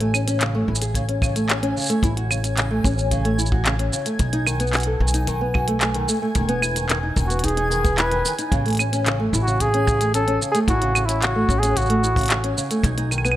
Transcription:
Already playing: A1 G#5
0.01 A3, closed hi-hat
0.14 C#4, claves, shaker
0.28 C#4, closed hi-hat, shaker
0.41 C#3, clap, closed hi-hat, shaker
0.55 A3
0.68 A1 E4
0.75 shaker
0.82 G#4, closed hi-hat, shaker
0.95 C#3, kick, closed hi-hat, shaker
1.09 C#4, closed hi-hat
1.22 C#3, kick, claves, shaker
1.36 A3, closed hi-hat, shaker
1.49 C#4, clap, closed hi-hat, shaker
1.63 C#4, closed hi-hat
1.76 C#3, shaker
1.79 shaker
1.81 shaker
1.84 shaker
1.86 shaker
1.88 A3, closed hi-hat, shaker
1.91 shaker
2.03 A1 E4, kick, closed hi-hat, shaker
2.17 F#4, closed hi-hat
2.30 C#3, claves, shaker
2.44 C#4, closed hi-hat, shaker
2.57 C#3, clap, closed hi-hat, shaker
2.71 A3
2.84 A1 C#4, kick, shaker
2.98 C#4, shaker
3.11 C#3, kick, closed hi-hat, shaker
3.25 A3, closed hi-hat
3.38 E4, shaker
3.46 shaker
3.52 F#4, kick
3.66 C#3, clap, closed hi-hat, shaker
3.79 C#4, closed hi-hat
3.93 C#3, shaker
4.06 A3, closed hi-hat, shaker
4.19 B1 D#4, kick, closed hi-hat, shaker
4.33 D#4, closed hi-hat
4.46 D#3, claves, shaker
4.60 B3, closed hi-hat, shaker
4.67 shaker
4.73 F#4, clap, closed hi-hat, shaker
4.77 closed hi-hat
4.80 closed hi-hat, shaker
4.83 A4, closed hi-hat
5.00 B1 D#3
5.08 shaker
5.14 D#4, closed hi-hat, shaker
5.27 D#3, kick, closed hi-hat, shaker
5.41 B3
5.54 F#4, kick, claves
5.68 A3, closed hi-hat
5.81 A3, clap, closed hi-hat, shaker
5.94 D#3, closed hi-hat
6.08 A3, shaker
6.22 A3
6.35 E1 D#3, kick, closed hi-hat, shaker
6.49 B3, closed hi-hat
6.62 E4, claves, shaker
6.76 D#3, closed hi-hat, shaker
6.89 D#3, clap, closed hi-hat, shaker
7.03 D#4
7.17 E1 D#3, kick, shaker
7.26 B3 F#4, closed hi-hat
7.31 shaker
7.39 closed hi-hat
7.44 D#4 G#4, kick, closed hi-hat, shaker
7.48 closed hi-hat
7.57 D#4, closed hi-hat
7.70 D#3, shaker
7.84 B3, kick, closed hi-hat, shaker
7.98 E4 B4, clap, closed hi-hat, shaker
8.11 D#3, closed hi-hat
8.25 D#3, shaker
8.39 D#4, closed hi-hat, shaker
8.52 A1 C#3, kick, closed hi-hat, shaker
8.66 A3, closed hi-hat
8.68 closed hi-hat
8.70 closed hi-hat
8.73 closed hi-hat
8.75 closed hi-hat
8.77 C#4, closed hi-hat, claves, shaker
8.93 C#4, closed hi-hat, shaker
9.06 C#3, clap, closed hi-hat, shaker
9.20 A3
9.33 A1 E4, shaker
9.43 F#4
9.47 C#3, shaker
9.60 C#3 G#4, kick, closed hi-hat, shaker
9.74 C#4, closed hi-hat
9.87 C#3, kick, claves, shaker
10.01 A3, closed hi-hat, shaker
10.14 C#4 A4, closed hi-hat, shaker
10.28 C#4, closed hi-hat
10.41 C#3, shaker
10.51 A3 G#4, closed hi-hat, shaker
10.68 A1 E4 F#4, kick, closed hi-hat, shaker
10.82 C#3, closed hi-hat
10.95 C#3, claves, shaker
11.05 C#4 E4, closed hi-hat
11.09 shaker
11.22 C#3 F#4, clap, closed hi-hat, shaker
11.36 A3
11.49 A1 C#4, kick, shaker
11.59 G#4
11.63 C#4, closed hi-hat, shaker
11.76 C#3 F#4, kick, closed hi-hat, shaker
11.81 shaker
11.86 A3, shaker
11.90 closed hi-hat
12.03 E4, shaker
12.16 C#3, kick, closed hi-hat, shaker
12.19 closed hi-hat
12.21 closed hi-hat
12.23 closed hi-hat
12.26 closed hi-hat
12.28 C#3, clap, closed hi-hat
12.30 closed hi-hat, shaker
12.44 C#4, closed hi-hat
12.57 C#3, shaker
12.71 A3, closed hi-hat, shaker
12.84 B1 D#4, kick, closed hi-hat, shaker
12.98 D#4, closed hi-hat
13.11 D#3, claves, shaker
13.18 claves
13.25 B3, claves, shaker
13.32 claves

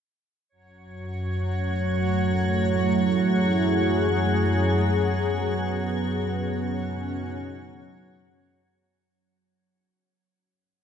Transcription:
0.49 F#2 F#3 C#5
1.27 A3
1.72 E4
2.47 G#4
4.81 B3
5.64 C#4
6.54 D#4

